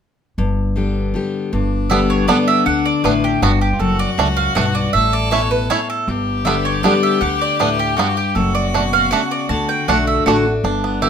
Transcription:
0.38 G1 G2
0.76 D3 G3 B3 G4
1.14 D3 G3 B3 G4
1.52 G1 G2 D4
1.90 D3 G3 B3 D4 G4 E5
2.10 C#5
2.28 D3 G3 B3 D4 G4 D5
2.48 E5
2.66 D2 D3 F#5
2.85 D5
3.04 A1 A2 G3 B3 D4 B4
3.24 G4
3.42 G1 G2 G3 B3 D4 F#4
3.61 G4
3.73 F4
3.79 F#1 F#2 F#4 A4
3.99 D5
4.18 C#2 F#2 A3 D4
4.37 F5
4.55 B1 G2 A3 D4 F#5
4.75 D5
4.93 A1 A2 A4 E5
5.13 D5
5.31 B2 A3 C#4 E4 C#5
5.51 B4
5.70 A2 A3 C#4 E4 C#5
5.90 A4
6.07 G1 G2 G4
6.45 D3 G3 B3 D4 G4 E5
6.65 C#5
6.83 D3 G3 B3 D4 G4 D5
7.03 E5
7.21 D2 D3 F#5
7.41 D5
7.59 A2 G3 B3 D4 B4
7.79 G4
7.97 G2 G3 B3 D4 F#4
8.17 G4
8.35 F#1 F#2 F#4 A4
8.55 D5
8.74 B2 A3 D4
8.93 F5
9.11 C#3 A3 D4 F#5
9.31 D5
9.49 D2 D3 F#4 A5
9.69 G5
9.88 B1 D3 A3 D4 F#4 F#5
10.07 E5
10.26 A1 D3 A3 D4 F#4 F#5
10.45 D4 F#4
10.64 G1 G2 D4
10.84 B3
11.02 D3 G3 B3 G4 E5

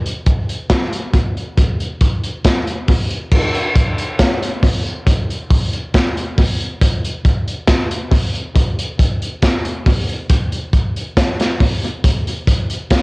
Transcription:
0.06 closed hi-hat
0.26 kick, closed hi-hat
0.49 closed hi-hat
0.70 kick, snare, closed hi-hat
0.93 closed hi-hat
1.14 kick, closed hi-hat
1.37 closed hi-hat
1.57 kick, closed hi-hat
1.80 closed hi-hat
2.01 kick, closed hi-hat
2.24 closed hi-hat
2.44 kick, snare, closed hi-hat
2.67 closed hi-hat
2.88 kick, open hi-hat
3.11 closed hi-hat
3.31 kick, crash
3.55 closed hi-hat
3.76 kick, closed hi-hat
3.98 closed hi-hat
4.19 kick, snare, closed hi-hat
4.43 closed hi-hat
4.63 kick, open hi-hat
4.87 closed hi-hat
5.07 kick, closed hi-hat
5.30 closed hi-hat
5.50 kick, open hi-hat
5.73 closed hi-hat
5.94 kick, snare, closed hi-hat
6.17 closed hi-hat
6.38 kick, open hi-hat
6.60 closed hi-hat
6.81 kick, closed hi-hat
7.04 closed hi-hat
7.25 kick, closed hi-hat
7.48 closed hi-hat
7.67 kick, snare, closed hi-hat
7.91 closed hi-hat
8.12 kick, open hi-hat
8.35 closed hi-hat
8.56 kick, closed hi-hat
8.79 closed hi-hat
8.99 kick, closed hi-hat
9.22 closed hi-hat
9.42 kick, snare, closed hi-hat
9.65 closed hi-hat
9.86 kick, open hi-hat
10.09 closed hi-hat
10.30 kick, closed hi-hat
10.52 closed hi-hat
10.73 kick, closed hi-hat
10.96 closed hi-hat
11.17 kick, snare, closed hi-hat
11.39 snare, closed hi-hat
11.60 kick, open hi-hat
11.84 closed hi-hat
12.04 kick, closed hi-hat
12.27 closed hi-hat
12.47 kick, closed hi-hat
12.70 closed hi-hat
12.90 kick, snare, closed hi-hat

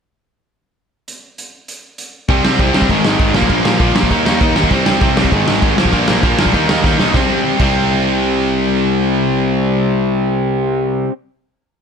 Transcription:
1.08 closed hi-hat
1.38 closed hi-hat
1.68 closed hi-hat
1.98 closed hi-hat
2.28 C2 C3 G3 C4, kick, crash
2.45 C2 C3 G3 C4, snare
2.59 C2 C3 G3 C4, kick, crash
2.74 C2 C3 G3 C4, snare
2.82 kick
2.89 G#1 G#2 D#3 G#3, kick, crash
3.05 G#1 G#2 D#3 G#3, snare
3.19 G#1 G#2 D#3 G#3, kick, crash
3.34 A#1 A#2 F3 A#3, snare
3.42 kick
3.50 A#1 A#2 F3 A#3, kick, crash
3.65 A#1 A#2 F3 A#3, snare
3.80 A#1 A#2 F3 A#3, kick, crash
3.95 A#1 A#2 F3 A#3, snare
4.03 kick
4.11 D#2 D#3 A#3 D#4, kick, crash
4.26 D#2 D#3 A#3 D#4, snare
4.40 D#2 D#3 A#3 D#4, kick, crash
4.56 D#2 D#3 A#3 D#4, snare
4.63 kick
4.71 C2 C3 G3 C4, kick, crash
4.86 C2 C3 G3 C4, snare
5.01 C2 C3 G3 C4, kick, crash
5.17 C2 C3 G3 C4, snare
5.25 kick
5.32 G#1 G#2 D#3 G#3, kick, crash
5.47 G#1 G#2 D#3 G#3, snare
5.62 G#1 G#2 D#3 G#3, kick, crash
5.78 A#1 A#2 F3 A#3, snare
5.85 kick
5.92 A#1 A#2 F3 A#3, kick, crash
6.07 A#1 A#2 F3 A#3, snare
6.23 A#1 A#2 F3 A#3, kick, crash
6.38 A#1 A#2 F3 A#3, snare
6.46 kick
6.53 D#2 D#3 A#3 D#4, kick, crash
6.69 D#2 D#3 A#3 D#4, snare
6.83 D#2 D#3 A#3 D#4, kick, snare
6.99 B1 D#3 A#3 D#4, snare
7.12 C2 C3 G3 C4, kick, snare
7.57 C2 C3 G3, kick, crash
7.62 C4

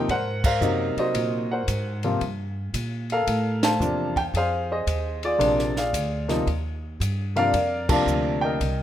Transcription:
0.09 G#2 A#4 C5 F#5, kick, ride
0.44 A#4 C5 F5, kick, crash
0.61 F#2 C3 F#3 A#3 D#4, hi-hat pedal
0.97 F#4 C5 D#5, muted upright bass stroke, ride
1.14 A#2, kick, ride
1.51 A#4 C5 F#5
1.68 G#2, kick, hi-hat pedal, ride
2.03 C3 F3 A#3 F4, ride
2.21 G2, kick, ride
2.74 A#2, kick, hi-hat pedal, ride
3.10 A4 A#4 F5, ride
3.27 A2, kick, ride
3.63 C5 F5 A5, snare, ride
3.80 E2 C3 F3 A#3 D4, hi-hat pedal
4.16 G5, kick, ride
4.34 F2 G#4 C5 F5, kick, ride
4.72 G#4 C5 D#5
4.87 D#2, kick, hi-hat pedal, ride
5.23 F4 G#4 D5, ride
5.38 A#1 C3 F3 A#3 D4, kick, ride
5.59 snare
5.77 G#4 D5 F5, snare
5.93 D2, kick, hi-hat pedal, ride
6.28 C3 F3 A#3 D#4, snare, ride
6.47 D#2, kick, ride
7.00 G2, kick, hi-hat pedal, ride
7.36 C3 F3 A#3 D4 A#4 D5 F5, ride
7.53 F2, kick, ride
7.89 C3 F3 A#3 D4 D5 F5 A5, kick, crash
8.06 D2, hi-hat pedal
8.41 A#4 D#5 G5
8.60 C2, kick, ride

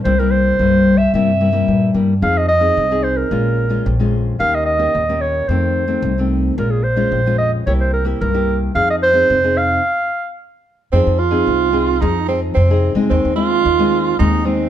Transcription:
0.04 C2 C3 G3 A#3 E4 C5
0.19 G3 A#3 E4 A#4
0.31 C5
0.59 C2 G2 G3 A#3 E4
0.98 E5
1.14 G2 C3 G3 A#3 E4 E5
1.41 G3 A#3 E4
1.52 G3 A#3 E4
1.68 G2 A#2
1.94 G2 G3 A#3 E4
2.22 F2 F3 C4 D#4 G#4 F5
2.37 D#5
2.48 D#5
2.60 C4 D#4 G#4
2.77 C2 C3
2.91 C4 D#4 G#4
3.03 C5
3.17 A#4
3.31 A#1 A#2 G#3 C#4 F4
3.69 G#3 C#4 F4
3.85 A#1 F2
4.00 G#3 C#4 F4
4.39 D#2 D#3 A#3 C#4 G4 F5
4.55 D#5
4.66 D#5
4.79 A#3 C#4 G4
4.94 D#2 A#2
5.09 A#3 C#4 G4
5.21 C#5
5.48 F2 D#3 A3 C4 C5
5.87 D#3 A3 C4
6.02 C2 C3
6.18 D#3 A3 C4
6.58 A#1 A#2 G#3 C#4 F4 A#4
6.71 G#4
6.83 C5
6.96 G#3 C#4 F4
7.12 A#1 F2
7.26 G#3 C#4 F4
7.38 D#5
7.66 C2 C3 A#3 E4 G4 C#5
7.80 C5
7.93 A#4
8.05 A#3 E4 G4
8.20 C2 G2 A#4
8.34 A#3 E4 G4
8.75 F2 F3 C4 D#4 G#4 F5
8.90 D#5
9.03 C5
9.13 C4 D#4 G#4
9.30 F2 C3
9.44 C4 D#4 G#4
9.57 F5
10.92 F2 F3 C4 D#4 G#4
11.07 F2
11.19 F4
11.31 C4 D#4 G#4
11.46 C2 C3
11.73 C4 D#4 G#4
12.01 F2 F3 C4 D#4 G#4
12.28 C4 D#4 G#4
12.55 F2 C3 C4
12.70 C4 D#4 G#4
12.95 F2 G#3 C4 D#4
13.10 D#2 D#3 C4
13.25 D#2
13.36 G#3 C4 D#4 F4
13.64 D#2 D#3
13.79 G#3 C4 D#4
14.19 D#2 D#3 G#3 C4 D#4
14.45 G#3 C4 D#4

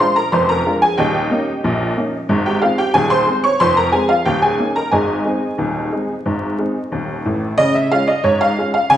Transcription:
0.00 G#3 D4 F4 C5 C6
0.16 A#4 A#5
0.32 F1 F2 C5 C6
0.49 A#4 A#5
0.66 G#3 D4 F4
0.82 G#4 G#5
0.97 D#1 D#2 G4 D#5 G5
1.31 A#3 C#4 D#4
1.64 A#1 A#2
1.97 A#3 C#4 D#4
2.29 G#1 G#2
2.46 G4 G5
2.62 G#3 C4 F4 F5
2.78 G4 G5
2.94 D#1 D#2 G#4 G#5
3.10 C5 C6
3.27 G#3 C4
3.44 C#5 C#6
3.60 F1 F2 C5 C6
3.77 A#4 A#5
3.92 G#3 C4 G#4 G#5
4.09 F4 F5
4.25 D#1 D#2 G4 G5
4.42 G#4 G#5
4.59 A#3 C#4 D#4
4.76 A#4 A#5
4.91 G#1 G#2 G#4 D#5 G#5
5.25 G#3 C4 D#4
5.58 D#1 D#2
5.92 G#3 C4 D#4
6.26 G#1 G#2
6.59 G#3 C4 D#4
6.92 D#1 D#2
7.25 A1 A2
7.58 C#3 D#5
7.75 E5
7.91 G#3 C#4 F4 F5
8.08 D#5
8.24 G#2 C#5
8.41 F5
8.58 G#3 C#4 F4
8.74 F5
8.90 C#3 G#5

